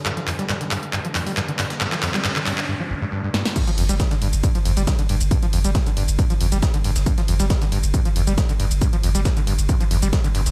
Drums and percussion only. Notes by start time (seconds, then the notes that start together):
0.06 clap, closed hi-hat
0.17 snare, closed hi-hat
0.28 clap, closed hi-hat, open hi-hat
0.39 snare, closed hi-hat
0.49 snare, clap, closed hi-hat
0.61 snare, closed hi-hat
0.71 clap, closed hi-hat, open hi-hat
0.83 closed hi-hat
0.93 clap, closed hi-hat
1.05 closed hi-hat
1.15 clap, closed hi-hat, open hi-hat
1.27 open hi-hat
1.37 snare, clap, closed hi-hat
1.48 closed hi-hat
1.59 snare, clap, closed hi-hat, open hi-hat
1.70 snare, closed hi-hat
1.81 snare, clap, closed hi-hat
1.92 snare, clap, closed hi-hat
2.03 snare, clap, closed hi-hat, open hi-hat
2.14 snare, clap, closed hi-hat
2.25 snare, clap, closed hi-hat
2.36 clap, closed hi-hat
2.46 clap, closed hi-hat, open hi-hat
2.58 clap, closed hi-hat
3.34 snare
3.45 snare
3.56 kick, closed hi-hat, crash, ride, shaker
3.67 snare, closed hi-hat, ride, shaker
3.78 closed hi-hat, open hi-hat, ride
3.89 snare, closed hi-hat, ride, shaker
4.00 kick, snare, closed hi-hat, ride, shaker
4.11 snare, closed hi-hat, ride, shaker
4.22 closed hi-hat, open hi-hat, ride
4.33 closed hi-hat, ride, shaker
4.44 kick, closed hi-hat, ride, shaker
4.55 closed hi-hat, ride, shaker
4.65 closed hi-hat, open hi-hat, ride
4.77 closed hi-hat, ride, shaker
4.87 kick, snare, closed hi-hat, ride, shaker
4.99 closed hi-hat, ride, shaker
5.09 closed hi-hat, open hi-hat, ride
5.21 closed hi-hat, ride, shaker
5.31 kick, closed hi-hat, ride, shaker
5.43 closed hi-hat, ride, shaker
5.53 closed hi-hat, open hi-hat, ride
5.64 closed hi-hat, ride, shaker
5.75 kick, snare, closed hi-hat, ride, shaker
5.86 closed hi-hat, ride, shaker
5.97 closed hi-hat, open hi-hat, ride
6.08 closed hi-hat, ride, shaker
6.19 kick, closed hi-hat, ride, shaker
6.30 closed hi-hat, ride, shaker
6.41 closed hi-hat, open hi-hat, ride
6.52 closed hi-hat, ride, shaker
6.63 kick, snare, closed hi-hat, ride, shaker
6.74 closed hi-hat, ride, shaker
6.84 closed hi-hat, open hi-hat, ride
6.96 snare, closed hi-hat, ride, shaker
7.06 kick, closed hi-hat, ride, shaker
7.18 snare, closed hi-hat, ride, shaker
7.28 closed hi-hat, open hi-hat, ride
7.40 snare, closed hi-hat, ride, shaker
7.50 kick, snare, closed hi-hat, ride, shaker
7.62 snare, closed hi-hat, ride, shaker
7.72 closed hi-hat, open hi-hat, ride
7.83 closed hi-hat, ride, shaker
7.94 kick, closed hi-hat, ride, shaker
8.05 closed hi-hat, ride, shaker
8.16 closed hi-hat, open hi-hat, ride
8.27 closed hi-hat, ride, shaker
8.38 kick, snare, closed hi-hat, ride, shaker
8.49 closed hi-hat, ride, shaker
8.60 closed hi-hat, open hi-hat, ride
8.71 closed hi-hat, ride, shaker
8.81 kick, closed hi-hat, ride, shaker
8.93 closed hi-hat, ride, shaker
9.03 closed hi-hat, open hi-hat, ride
9.15 closed hi-hat, ride, shaker
9.25 kick, snare, closed hi-hat, ride, shaker
9.37 closed hi-hat, ride, shaker
9.47 closed hi-hat, open hi-hat, ride
9.59 closed hi-hat, ride, shaker
9.69 kick, closed hi-hat, ride, shaker
9.81 closed hi-hat, ride, shaker
9.91 closed hi-hat, open hi-hat, ride
10.02 closed hi-hat, ride, shaker
10.13 kick, snare, closed hi-hat, ride, shaker
10.24 closed hi-hat, ride, shaker
10.35 closed hi-hat, open hi-hat, ride
10.46 snare, closed hi-hat, ride, shaker